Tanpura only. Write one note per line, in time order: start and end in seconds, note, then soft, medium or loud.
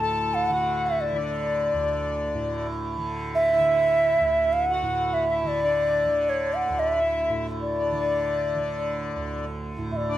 0.00 1.73 D2 medium
0.00 2.34 A2 medium
0.00 0.49 D3 medium
0.49 1.11 D3 medium
1.11 2.97 D3 medium
1.73 4.20 D2 medium
2.35 4.82 A2 medium
2.97 3.59 D3 medium
3.59 5.44 D3 medium
4.20 6.68 D2 medium
4.83 7.29 A2 medium
5.44 6.05 D3 medium
6.05 7.92 D3 medium
6.69 9.15 D2 medium
7.30 9.77 A2 medium
7.92 8.55 D3 medium
8.55 10.18 D3 medium
9.16 10.18 D2 medium
9.78 9.91 A2 medium
9.91 10.18 A2 medium